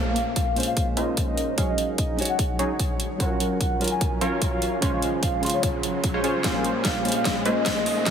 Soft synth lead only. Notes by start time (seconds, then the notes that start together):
Already playing: F5
0.36 F5
0.67 F5
0.97 D#5
1.27 D#5
1.68 D#5
1.98 D#5
2.29 F#5
3.20 F#5
3.61 F#5
3.91 G#5
4.21 F5
4.52 F5
4.93 F5
5.22 F5
5.53 C#5
6.44 F5
6.85 F5
7.16 F5
7.46 D#5
7.76 D#5